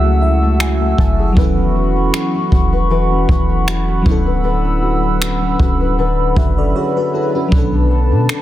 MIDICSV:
0, 0, Header, 1, 6, 480
1, 0, Start_track
1, 0, Tempo, 769231
1, 852, Time_signature, 4, 2, 24, 8
1, 5253, End_track
2, 0, Start_track
2, 0, Title_t, "Analog synth pad"
2, 0, Program_c, 0, 89
2, 0, Note_on_c, 0, 66, 85
2, 0, Note_on_c, 0, 76, 72
2, 0, Note_on_c, 0, 78, 72
2, 0, Note_on_c, 0, 88, 90
2, 833, Note_off_c, 0, 78, 0
2, 834, Note_off_c, 0, 76, 0
2, 834, Note_off_c, 0, 88, 0
2, 852, Note_on_c, 0, 78, 78
2, 854, Note_on_c, 0, 83, 77
2, 854, Note_on_c, 0, 85, 89
2, 2508, Note_off_c, 0, 66, 0
2, 2517, Note_off_c, 0, 85, 0
2, 2531, Note_on_c, 0, 88, 90
2, 2532, Note_on_c, 0, 71, 83
2, 4668, Note_off_c, 0, 78, 0
2, 4670, Note_off_c, 0, 88, 0
2, 4694, Note_on_c, 0, 81, 73
2, 5253, Note_off_c, 0, 71, 0
2, 5253, Note_off_c, 0, 81, 0
2, 5253, Note_off_c, 0, 83, 0
2, 5253, End_track
3, 0, Start_track
3, 0, Title_t, "FM electric piano"
3, 0, Program_c, 1, 5
3, 0, Control_c, 1, 64, 127
3, 0, Note_on_c, 1, 54, 72
3, 0, Note_on_c, 1, 56, 77
3, 0, Note_on_c, 1, 57, 66
3, 0, Note_on_c, 1, 61, 60
3, 0, Note_on_c, 1, 64, 62
3, 139, Note_on_c, 1, 76, 65
3, 359, Note_off_c, 1, 76, 0
3, 382, Note_on_c, 1, 80, 71
3, 601, Note_off_c, 1, 80, 0
3, 620, Note_on_c, 1, 81, 68
3, 816, Note_off_c, 1, 54, 0
3, 823, Note_off_c, 1, 57, 0
3, 827, Note_on_c, 1, 54, 74
3, 831, Note_off_c, 1, 61, 0
3, 838, Note_off_c, 1, 64, 0
3, 840, Note_off_c, 1, 81, 0
3, 842, Note_on_c, 1, 59, 66
3, 845, Note_off_c, 1, 56, 0
3, 857, Note_on_c, 1, 61, 66
3, 861, Control_c, 1, 64, 0
3, 872, Note_on_c, 1, 64, 65
3, 886, Note_on_c, 1, 69, 79
3, 980, Control_c, 1, 64, 127
3, 2495, Note_off_c, 1, 54, 0
3, 2502, Note_off_c, 1, 59, 0
3, 2508, Note_on_c, 1, 54, 74
3, 2510, Note_off_c, 1, 61, 0
3, 2517, Note_off_c, 1, 64, 0
3, 2522, Note_on_c, 1, 59, 65
3, 2524, Note_off_c, 1, 69, 0
3, 2538, Note_on_c, 1, 61, 67
3, 2542, Control_c, 1, 64, 0
3, 2552, Note_on_c, 1, 64, 65
3, 2567, Note_on_c, 1, 69, 82
3, 2637, Control_c, 1, 64, 127
3, 3950, Note_off_c, 1, 61, 0
3, 3958, Note_off_c, 1, 64, 0
3, 3965, Note_off_c, 1, 69, 0
3, 3976, Note_on_c, 1, 76, 59
3, 3981, Note_on_c, 1, 71, 50
3, 4098, Note_off_c, 1, 76, 0
3, 4100, Note_off_c, 1, 71, 0
3, 4107, Note_on_c, 1, 74, 64
3, 4110, Note_on_c, 1, 69, 54
3, 4210, Note_off_c, 1, 74, 0
3, 4211, Note_off_c, 1, 69, 0
3, 4215, Note_on_c, 1, 73, 66
3, 4220, Note_on_c, 1, 68, 54
3, 4337, Note_off_c, 1, 73, 0
3, 4340, Note_off_c, 1, 68, 0
3, 4349, Note_on_c, 1, 71, 71
3, 4354, Note_on_c, 1, 66, 59
3, 4415, Note_off_c, 1, 54, 0
3, 4423, Note_off_c, 1, 59, 0
3, 4451, Note_off_c, 1, 71, 0
3, 4453, Note_off_c, 1, 66, 0
3, 4460, Note_on_c, 1, 69, 63
3, 4464, Note_on_c, 1, 64, 55
3, 4580, Note_off_c, 1, 69, 0
3, 4582, Note_off_c, 1, 64, 0
3, 4587, Note_on_c, 1, 66, 56
3, 4591, Note_on_c, 1, 61, 50
3, 4670, Note_on_c, 1, 54, 71
3, 4685, Note_on_c, 1, 59, 64
3, 4693, Note_off_c, 1, 61, 0
3, 4700, Control_c, 1, 64, 0
3, 4700, Note_on_c, 1, 61, 64
3, 4714, Note_on_c, 1, 62, 66
3, 4729, Note_on_c, 1, 69, 74
3, 4813, Note_off_c, 1, 66, 0
3, 4814, Control_c, 1, 64, 127
3, 5253, Note_off_c, 1, 54, 0
3, 5253, Note_off_c, 1, 59, 0
3, 5253, Note_off_c, 1, 61, 0
3, 5253, Note_off_c, 1, 62, 0
3, 5253, Note_off_c, 1, 69, 0
3, 5253, End_track
4, 0, Start_track
4, 0, Title_t, "Nylon-string guitar"
4, 0, Program_c, 2, 24
4, 0, Note_on_c, 2, 54, 78
4, 0, Note_on_c, 2, 64, 58
4, 0, Note_on_c, 2, 68, 68
4, 22, Note_on_c, 2, 57, 56
4, 130, Note_off_c, 2, 64, 0
4, 132, Note_on_c, 2, 64, 61
4, 261, Note_off_c, 2, 57, 0
4, 264, Note_on_c, 2, 57, 54
4, 371, Note_off_c, 2, 64, 0
4, 374, Note_on_c, 2, 64, 64
4, 499, Note_off_c, 2, 57, 0
4, 501, Note_on_c, 2, 57, 57
4, 609, Note_off_c, 2, 64, 0
4, 611, Note_on_c, 2, 64, 63
4, 736, Note_off_c, 2, 68, 0
4, 743, Note_on_c, 2, 68, 60
4, 850, Note_off_c, 2, 54, 0
4, 852, Note_on_c, 2, 52, 79
4, 856, Note_on_c, 2, 71, 70
4, 905, Note_off_c, 2, 68, 0
4, 980, Note_off_c, 2, 64, 0
4, 982, Note_on_c, 2, 61, 59
4, 1092, Note_on_c, 2, 66, 61
4, 1220, Note_off_c, 2, 61, 0
4, 1223, Note_on_c, 2, 61, 62
4, 1329, Note_off_c, 2, 66, 0
4, 1332, Note_on_c, 2, 66, 62
4, 1461, Note_off_c, 2, 61, 0
4, 1464, Note_on_c, 2, 61, 61
4, 1571, Note_off_c, 2, 66, 0
4, 1573, Note_on_c, 2, 66, 60
4, 1699, Note_off_c, 2, 71, 0
4, 1702, Note_on_c, 2, 71, 65
4, 1721, Note_off_c, 2, 57, 0
4, 1809, Note_off_c, 2, 52, 0
4, 1811, Note_on_c, 2, 52, 85
4, 1813, Note_off_c, 2, 71, 0
4, 1815, Note_on_c, 2, 71, 69
4, 1940, Note_off_c, 2, 61, 0
4, 1942, Note_on_c, 2, 61, 60
4, 2049, Note_off_c, 2, 66, 0
4, 2178, Note_off_c, 2, 61, 0
4, 2181, Note_on_c, 2, 61, 56
4, 2292, Note_on_c, 2, 66, 62
4, 2419, Note_off_c, 2, 61, 0
4, 2422, Note_on_c, 2, 61, 56
4, 2528, Note_off_c, 2, 52, 0
4, 2530, Note_on_c, 2, 50, 79
4, 2658, Note_off_c, 2, 71, 0
4, 2661, Note_on_c, 2, 71, 60
4, 2679, Note_off_c, 2, 61, 0
4, 2768, Note_off_c, 2, 50, 0
4, 2770, Note_on_c, 2, 50, 83
4, 2771, Note_off_c, 2, 71, 0
4, 2774, Note_on_c, 2, 71, 70
4, 2901, Note_on_c, 2, 61, 57
4, 3007, Note_off_c, 2, 66, 0
4, 3010, Note_on_c, 2, 66, 59
4, 3139, Note_off_c, 2, 61, 0
4, 3142, Note_on_c, 2, 61, 57
4, 3252, Note_off_c, 2, 66, 0
4, 3254, Note_on_c, 2, 66, 60
4, 3380, Note_off_c, 2, 61, 0
4, 3383, Note_on_c, 2, 61, 58
4, 3491, Note_off_c, 2, 66, 0
4, 3493, Note_on_c, 2, 66, 57
4, 3622, Note_off_c, 2, 71, 0
4, 3624, Note_on_c, 2, 71, 61
4, 3732, Note_off_c, 2, 50, 0
4, 3735, Note_on_c, 2, 50, 84
4, 3736, Note_off_c, 2, 71, 0
4, 3739, Note_on_c, 2, 71, 71
4, 3860, Note_off_c, 2, 61, 0
4, 3863, Note_on_c, 2, 61, 56
4, 3973, Note_off_c, 2, 66, 0
4, 3975, Note_on_c, 2, 66, 61
4, 4103, Note_off_c, 2, 61, 0
4, 4105, Note_on_c, 2, 61, 58
4, 4212, Note_off_c, 2, 66, 0
4, 4215, Note_on_c, 2, 66, 60
4, 4341, Note_off_c, 2, 61, 0
4, 4344, Note_on_c, 2, 61, 56
4, 4452, Note_off_c, 2, 66, 0
4, 4455, Note_on_c, 2, 66, 60
4, 4582, Note_off_c, 2, 71, 0
4, 4584, Note_on_c, 2, 71, 61
4, 4694, Note_on_c, 2, 59, 77
4, 4695, Note_off_c, 2, 71, 0
4, 4697, Note_on_c, 2, 73, 64
4, 4823, Note_off_c, 2, 61, 0
4, 4825, Note_on_c, 2, 62, 54
4, 4933, Note_off_c, 2, 66, 0
4, 4935, Note_on_c, 2, 69, 58
4, 5062, Note_off_c, 2, 62, 0
4, 5065, Note_on_c, 2, 62, 58
4, 5169, Note_off_c, 2, 69, 0
4, 5176, Note_on_c, 2, 69, 57
4, 5253, Note_off_c, 2, 50, 0
4, 5253, Note_off_c, 2, 59, 0
4, 5253, Note_off_c, 2, 62, 0
4, 5253, Note_off_c, 2, 69, 0
4, 5253, Note_off_c, 2, 73, 0
4, 5253, End_track
5, 0, Start_track
5, 0, Title_t, "808-style bass"
5, 0, Program_c, 3, 38
5, 0, Note_on_c, 3, 37, 92
5, 588, Note_off_c, 3, 37, 0
5, 614, Note_on_c, 3, 30, 100
5, 844, Note_off_c, 3, 30, 0
5, 854, Note_on_c, 3, 28, 102
5, 1314, Note_off_c, 3, 28, 0
5, 1572, Note_on_c, 3, 28, 103
5, 2033, Note_off_c, 3, 28, 0
5, 2053, Note_on_c, 3, 28, 106
5, 2514, Note_off_c, 3, 28, 0
5, 2533, Note_on_c, 3, 26, 103
5, 3468, Note_off_c, 3, 26, 0
5, 3493, Note_on_c, 3, 26, 97
5, 3953, Note_off_c, 3, 26, 0
5, 3972, Note_on_c, 3, 30, 106
5, 4203, Note_off_c, 3, 30, 0
5, 4694, Note_on_c, 3, 35, 98
5, 5063, Note_on_c, 3, 47, 101
5, 5073, Note_off_c, 3, 35, 0
5, 5168, Note_off_c, 3, 47, 0
5, 5253, End_track
6, 0, Start_track
6, 0, Title_t, "Drums"
6, 375, Note_on_c, 9, 26, 110
6, 438, Note_off_c, 9, 26, 0
6, 614, Note_on_c, 9, 36, 91
6, 676, Note_off_c, 9, 36, 0
6, 853, Note_on_c, 9, 36, 116
6, 915, Note_off_c, 9, 36, 0
6, 1334, Note_on_c, 9, 26, 108
6, 1397, Note_off_c, 9, 26, 0
6, 1572, Note_on_c, 9, 36, 84
6, 1635, Note_off_c, 9, 36, 0
6, 2052, Note_on_c, 9, 36, 95
6, 2115, Note_off_c, 9, 36, 0
6, 2295, Note_on_c, 9, 26, 105
6, 2358, Note_off_c, 9, 26, 0
6, 2533, Note_on_c, 9, 36, 108
6, 2595, Note_off_c, 9, 36, 0
6, 3255, Note_on_c, 9, 26, 108
6, 3317, Note_off_c, 9, 26, 0
6, 3492, Note_on_c, 9, 36, 86
6, 3554, Note_off_c, 9, 36, 0
6, 3972, Note_on_c, 9, 36, 103
6, 4034, Note_off_c, 9, 36, 0
6, 4693, Note_on_c, 9, 36, 115
6, 4755, Note_off_c, 9, 36, 0
6, 5174, Note_on_c, 9, 26, 107
6, 5237, Note_off_c, 9, 26, 0
6, 5253, End_track
0, 0, End_of_file